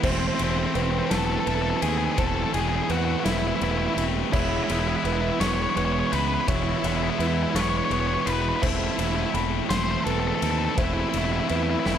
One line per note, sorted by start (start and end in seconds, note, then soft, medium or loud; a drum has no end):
0.00 0.28 E1 loud
0.00 0.74 E3 loud
0.00 0.42 A3 loud
0.00 4.29 A3 medium
0.00 0.11 C4 medium
0.00 0.75 C5 medium
0.00 4.29 E5 medium
0.00 8.59 E6 medium
0.00 kick loud
0.00 crash loud
0.04 0.40 C4 loud
0.04 0.38 E4 loud
0.12 0.19 C4 medium
0.19 0.27 C4 medium
0.27 0.34 C4 medium
0.35 0.43 C4 medium
0.35 0.77 E4 medium
0.39 0.64 E1 medium
0.39 0.75 A3 medium
0.39 0.76 C4 medium
0.39 ride medium
0.44 0.50 C4 medium
0.50 0.58 C4 loud
0.59 0.66 C4 medium
0.66 0.74 C4 medium
0.74 1.00 E1 loud
0.74 1.45 E3 medium
0.74 1.11 A3 medium
0.74 0.82 C4 medium
0.74 1.10 C4 medium
0.74 1.09 E4 medium
0.74 1.44 B4 medium
0.74 ride medium
0.83 0.91 C4 medium
0.91 0.98 C4 medium
0.99 1.05 C4 medium
1.06 1.14 C4 medium
1.06 1.48 E4 medium
1.10 1.36 E1 medium
1.10 1.45 E3 medium
1.10 1.46 A3 medium
1.10 1.47 C4 medium
1.10 1.18 A4 loud
1.10 snare loud
1.10 ride loud
1.18 1.25 A4 medium
1.26 1.32 A4 loud
1.32 1.40 A4 medium
1.40 1.47 A4 loud
1.46 1.71 E1 medium
1.46 2.17 E3 medium
1.46 1.84 A3 medium
1.46 1.83 C4 medium
1.46 1.82 E4 medium
1.46 1.55 A4 medium
1.46 2.18 B4 medium
1.46 ride medium
1.55 1.62 A4 loud
1.62 1.69 A4 medium
1.70 1.76 A4 loud
1.77 1.82 A4 medium
1.82 2.07 D#2 medium
1.82 2.18 A3 medium
1.82 2.19 C4 medium
1.82 2.20 E4 medium
1.82 1.89 G#4 medium
1.82 ride medium
1.89 1.96 G#4 medium
1.98 2.05 G#4 medium
2.05 2.12 G#4 medium
2.12 2.19 G#4 medium
2.17 2.43 E1 loud
2.17 2.89 E3 loud
2.17 2.55 A3 loud
2.17 2.54 C4 loud
2.17 2.53 E4 loud
2.17 2.27 A4 loud
2.17 2.90 C5 medium
2.17 kick loud
2.17 ride loud
2.27 2.35 A4 medium
2.36 2.43 A4 loud
2.43 2.51 A4 medium
2.53 2.79 E1 medium
2.53 2.89 A3 medium
2.53 2.90 C4 medium
2.53 2.92 E4 medium
2.53 2.60 G#4 medium
2.53 ride medium
2.61 2.68 G#4 medium
2.69 2.76 G#4 medium
2.76 2.83 G#4 medium
2.83 2.91 G#4 medium
2.89 3.14 E2 medium
2.89 3.61 E3 medium
2.89 3.26 A3 medium
2.89 3.25 C4 medium
2.89 3.23 E4 medium
2.89 2.97 F#4 medium
2.89 3.61 B4 medium
2.89 ride medium
2.97 3.05 F#4 medium
3.05 3.12 F#4 medium
3.12 3.19 F#4 medium
3.20 3.63 E4 medium
3.20 3.24 F#4 medium
3.25 3.50 E1 medium
3.25 3.60 E3 medium
3.25 3.61 A3 medium
3.25 3.62 C4 medium
3.25 3.32 E4 loud
3.25 snare loud
3.25 ride loud
3.32 3.38 E4 medium
3.38 3.46 E4 loud
3.48 3.55 E4 medium
3.55 3.63 E4 loud
3.61 3.86 E1 medium
3.61 4.31 E3 medium
3.61 3.99 A3 medium
3.61 3.97 C4 medium
3.61 3.71 E4 medium
3.61 3.96 E4 medium
3.61 4.33 B4 medium
3.61 ride medium
3.71 3.78 E4 loud
3.78 3.86 E4 medium
3.86 3.94 E4 loud
3.94 4.22 E1 medium
3.94 4.31 C4 medium
3.94 4.02 E4 medium
3.94 4.35 E4 medium
3.94 ride medium
4.00 4.32 A3 medium
4.32 4.58 E1 loud
4.32 5.03 E3 medium
4.32 4.71 G#3 loud
4.32 4.69 B3 loud
4.32 4.40 E4 loud
4.32 4.68 E4 loud
4.32 8.58 G#4 medium
4.32 5.05 C#5 medium
4.32 11.98 E5 medium
4.32 6.45 B5 medium
4.32 kick loud
4.32 crash loud
4.40 4.48 E4 medium
4.49 4.56 E4 medium
4.57 4.63 E4 medium
4.64 4.71 E4 loud
4.68 4.94 E1 medium
4.68 5.04 G#3 medium
4.68 5.04 B3 medium
4.68 5.05 E4 medium
4.68 4.79 E4 medium
4.68 ride medium
4.80 4.87 E4 loud
4.88 4.96 E4 medium
4.96 5.04 E4 medium
5.03 5.29 E1 medium
5.03 5.74 E3 medium
5.03 5.42 G#3 medium
5.03 5.40 B3 medium
5.03 5.13 E4 medium
5.03 5.39 E4 medium
5.03 5.75 B4 medium
5.03 ride medium
5.13 5.21 E4 medium
5.21 5.29 E4 medium
5.30 5.38 E4 medium
5.39 5.65 E1 medium
5.39 5.75 E3 medium
5.39 5.75 G#3 medium
5.39 5.76 B3 medium
5.39 5.77 E4 medium
5.39 5.47 C#5 loud
5.39 snare loud
5.39 ride loud
5.48 5.54 C#5 loud
5.55 5.62 C#5 loud
5.62 5.70 C#5 loud
5.70 5.76 C#5 loud
5.75 6.01 E1 loud
5.75 6.46 E3 medium
5.75 6.12 G#3 medium
5.75 6.11 B3 loud
5.75 6.09 E4 loud
5.75 6.48 B4 medium
5.75 5.84 C#5 loud
5.75 ride medium
5.85 5.92 C#5 loud
5.93 5.99 C#5 medium
6.00 6.06 C#5 loud
6.07 6.50 E4 medium
6.07 6.14 C#5 medium
6.12 6.37 C#2 loud
6.12 6.47 G#3 medium
6.12 6.48 B3 medium
6.12 6.19 B4 loud
6.12 ride medium
6.19 6.26 B4 medium
6.28 6.34 B4 medium
6.34 6.40 B4 medium
6.41 6.48 B4 medium
6.47 6.73 E1 loud
6.47 7.18 E3 loud
6.47 6.85 G#3 loud
6.47 6.83 B3 loud
6.47 6.55 E4 loud
6.47 6.83 E4 loud
6.47 7.19 C#5 medium
6.47 8.61 C#6 medium
6.47 kick loud
6.47 ride loud
6.56 6.63 E4 medium
6.63 6.71 E4 medium
6.72 6.78 E4 medium
6.79 6.87 E4 medium
6.83 7.08 E1 medium
6.83 7.19 G#3 medium
6.83 7.19 B3 medium
6.83 7.21 E4 medium
6.83 ride medium
6.87 6.95 E4 medium
6.96 7.03 E4 loud
7.03 7.10 E4 medium
7.10 7.18 E4 loud
7.18 7.44 E2 medium
7.18 7.90 E3 medium
7.18 7.56 G#3 medium
7.18 7.54 B3 medium
7.18 7.27 E4 medium
7.18 7.53 E4 medium
7.18 7.90 B4 medium
7.18 ride medium
7.27 7.34 E4 loud
7.34 7.42 E4 medium
7.43 7.51 E4 medium
7.51 7.79 E1 loud
7.51 7.59 E4 medium
7.51 7.93 E4 medium
7.55 7.90 E3 medium
7.55 7.91 G#3 medium
7.55 7.91 B3 medium
7.55 7.62 C#5 loud
7.55 snare loud
7.55 ride loud
7.62 7.69 C#5 medium
7.69 7.77 C#5 loud
7.77 7.84 C#5 medium
7.85 7.92 C#5 loud
7.90 8.15 E1 loud
7.90 8.62 E3 medium
7.90 8.29 G#3 medium
7.90 8.27 B3 medium
7.90 8.26 E4 medium
7.90 8.63 B4 medium
7.90 8.00 C#5 loud
7.90 ride medium
8.00 8.07 C#5 loud
8.07 8.14 C#5 medium
8.14 8.21 C#5 loud
8.21 8.29 C#5 medium
8.26 8.51 E1 medium
8.26 8.62 G#3 medium
8.26 8.61 B3 medium
8.26 8.65 E4 medium
8.26 8.32 B4 loud
8.26 ride medium
8.33 8.40 B4 medium
8.42 8.48 B4 medium
8.49 8.56 B4 medium
8.56 8.64 B4 medium
8.62 8.88 E1 loud
8.62 9.33 E3 loud
8.62 9.01 A3 loud
8.62 9.00 C4 loud
8.62 8.68 E4 loud
8.62 8.98 E4 loud
8.62 11.98 A4 medium
8.62 9.34 C5 medium
8.62 11.98 A5 medium
8.62 11.98 E6 medium
8.62 kick loud
8.62 crash loud
8.69 8.76 E4 medium
8.77 8.84 E4 medium
8.84 8.92 E4 medium
8.92 9.00 E4 loud
8.98 9.23 E1 medium
8.98 9.34 A3 medium
8.98 9.35 C4 medium
8.98 9.36 E4 medium
8.98 9.08 E4 medium
8.98 ride medium
9.08 9.15 E4 loud
9.16 9.22 E4 medium
9.22 9.30 E4 medium
9.34 9.59 E1 medium
9.34 10.05 E3 medium
9.34 9.72 A3 medium
9.34 9.70 C4 medium
9.34 9.69 E4 medium
9.34 10.06 B5 medium
9.34 ride medium
9.69 9.95 E1 loud
9.69 10.04 E3 medium
9.69 10.06 A3 medium
9.69 10.07 C4 medium
9.69 10.09 E4 medium
9.69 9.77 C5 loud
9.69 snare loud
9.69 ride loud
9.77 9.83 C5 loud
9.84 9.91 C5 loud
9.91 9.99 C5 loud
10.01 10.11 A4 loud
10.01 10.04 C5 loud
10.06 10.31 E1 medium
10.06 10.77 E3 medium
10.06 10.44 A3 medium
10.06 10.42 C4 medium
10.06 10.42 E4 loud
10.06 10.78 B4 medium
10.06 ride medium
10.11 10.19 A4 medium
10.20 10.27 A4 loud
10.28 10.34 A4 loud
10.35 10.42 A4 loud
10.42 10.67 D#2 medium
10.42 10.78 A3 medium
10.42 10.78 C4 medium
10.42 10.80 E4 medium
10.42 10.50 A4 medium
10.42 ride medium
10.51 10.58 A4 loud
10.59 10.65 A4 medium
10.65 10.73 A4 loud
10.77 11.03 E1 loud
10.77 11.47 E3 loud
10.77 11.15 A3 loud
10.77 11.13 C4 loud
10.77 10.84 E4 medium
10.77 11.12 E4 loud
10.77 11.50 C5 medium
10.77 kick loud
10.77 ride loud
10.85 10.93 E4 medium
10.93 11.00 E4 medium
11.00 11.08 E4 medium
11.10 11.17 E4 medium
11.10 11.50 E4 medium
11.14 11.39 E1 medium
11.14 11.49 A3 medium
11.14 11.50 C4 medium
11.14 ride medium
11.18 11.25 E4 medium
11.25 11.32 E4 medium
11.32 11.40 E4 medium
11.40 11.48 E4 medium
11.48 11.75 E2 medium
11.48 11.98 E3 medium
11.48 11.87 A3 medium
11.48 11.85 C4 medium
11.48 11.56 E4 medium
11.48 11.84 E4 medium
11.48 11.98 B4 medium
11.48 ride medium
11.56 11.63 E4 medium
11.63 11.70 E4 medium
11.70 11.78 E4 medium
11.80 11.86 E4 medium
11.85 11.98 E1 medium
11.85 11.98 E3 medium
11.85 11.98 A3 medium
11.85 11.98 C4 medium
11.85 11.98 E4 medium
11.85 11.94 E4 medium
11.85 snare medium
11.95 11.98 E4 medium